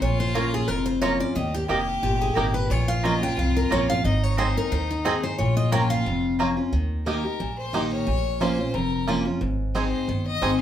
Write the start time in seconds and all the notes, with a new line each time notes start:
0.01 A#1 A#2 F4 C#5
0.20 C5
0.34 F3 A#3 C#4 F4 A#4 C#5 A#5
0.54 G#4
0.68 F1 F2 A#4
0.86 C5
1.01 F3 A#3 C#4 F4 C#5 A#5
1.19 C#4 F4 D5
1.35 D#2 D#3 G4 D#5
1.54 G4
1.68 F1 D#3 A#3 D#4 G4 D#5 G5
2.02 G1 A#2 G4
2.21 G#4
2.35 G#1 D#3 A#3 D#4 G4 A#4 D#5 G5
2.54 B4
2.69 A#1 A#2 F4 C#5
2.88 F5
3.03 F3 A#3 C#4 F4 C#5 D#5 A#5
3.21 C#4 F4 G5
3.37 C2 F2 F5
3.56 A#4
3.70 A#1 F3 A#3 C#4 F4 C#5 A#5
3.90 F5
4.04 G#1 G#2 D#4 D#5
4.23 C#5
4.37 G#3 C4 D#4 G#4 C5 D#5 G#5
4.57 A#4
4.72 D#2 D#3 C5
4.91 D#4
5.05 G#3 C4 D#4 G#4 D#5 G#5
5.23 D#4 G#4 C5
5.38 A#1 A#2 F4 C#5
5.57 D#5
5.72 F3 A#3 C#4 F4 C#5 G5 A#5
5.90 F5
6.06 F1 F2
6.39 F3 A#3 C#4 F4 C#5 A#5
6.57 C#4 F4
6.73 D#2 D#3
7.06 D#3 A#3 D#4 G4 A#4
7.24 D#4 G4
7.40 A#1 A#2
7.58 C5
7.73 D#3 A#3 D#4 G4
7.92 C#5
8.07 A#1 A#2
8.40 F3 A#3 C#4 F4 C5
8.58 C#4 F4
8.74 F1 F2 A#4
9.07 F3 A#3 C#4 F4
9.25 C#4 F4
9.41 G#1 G#2
9.75 G#3 C4 D#4 G#4 C5
10.08 G1 D#3
10.27 D#5
10.41 G#1 G#3 C4 D#4 G#4